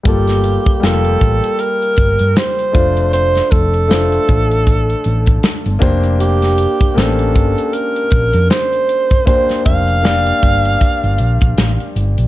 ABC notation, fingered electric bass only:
X:1
M:4/4
L:1/16
Q:"Swing 16ths" 1/4=78
K:Bblyd
V:1 name="Fingered electric bass" clef=bass
G,,,3 z F,,,2 A,,, z3 G,,, G,, z2 F,,,2- | F,,,2 F,,,4 A,,,4 A,,,2 z G,,, F,,,2- | F,,,3 z A,,,2 G,,, z3 B,,, F,, z4 | z2 F,,,4 G,,,2 z G,,, B,,, B,,, A,,, z G,,, B,,, |]